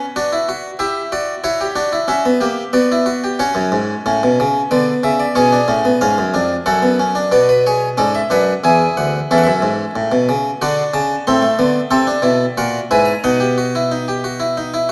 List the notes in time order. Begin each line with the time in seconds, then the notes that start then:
Already playing: F#4 B4
0.16 D4 F#4
0.32 E4
0.49 F#4
0.79 E4 G4 E5
1.12 F#4 D5
1.44 E4 F#4 C#5
1.61 G4
1.76 D4 F#4
1.92 E4
2.08 C#4 F#4 E5
2.25 B3
2.41 A#3 G4
2.73 B3 F#4 D5
2.92 E4
3.06 F#4
3.24 G4
3.39 C#4 F#4 C#5
3.55 F#2
3.72 G#2
4.06 A2 C#4
4.23 B2
4.40 C#3
4.71 D3 B3 D5
5.03 C#3 E5
5.20 D5
5.35 B2 C#4 G#4 C#5
5.52 D4
5.68 A2 C#4
5.85 B3
6.01 G#2 C#4 F5
6.18 F#2
6.34 F2 D4
6.66 F#2 C#4 A4 F#5
6.82 B3
7.00 C#4
7.15 D4
7.32 B2 B3 F#4 D5
7.49 B4
7.66 G#4 C#5
7.97 G#2 C#4 A4 D5
8.15 E5
8.30 F#2 D4 B4 F#5
8.64 E2 E4 G#4 G#5
8.97 D2 F#5
9.31 E2 C#4 A4 E5
9.38 F#5
9.44 F#2 E5
9.62 G#2
9.96 A2
10.12 B2
10.29 C#3
10.62 D3 D4 F#4 F#5
10.94 C#3 A5
11.27 A2 C4 A4 C6
11.42 A3
11.59 D3 B3
11.91 C3 C4 A4 A5
12.07 D4
12.22 B2 E4
12.58 A#2 F#4 A#4 F#5
12.91 G#2 E4 B4 G#5
13.05 A#5
13.24 B2 D#4 D#5 F#5
13.40 G4
13.58 F#4
13.75 E4
13.92 D#4
14.08 G4
14.24 F#4
14.40 E4
14.57 D#4
14.74 E4